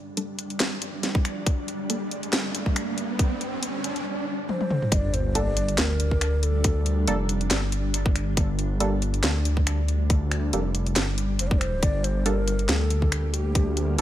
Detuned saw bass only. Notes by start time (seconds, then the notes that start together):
4.92 G1
5.78 D2
7.07 F1
7.51 G1
8.37 G1
9.24 D2
10.53 F1
10.96 G1
11.40 F1
11.83 G1
12.69 D2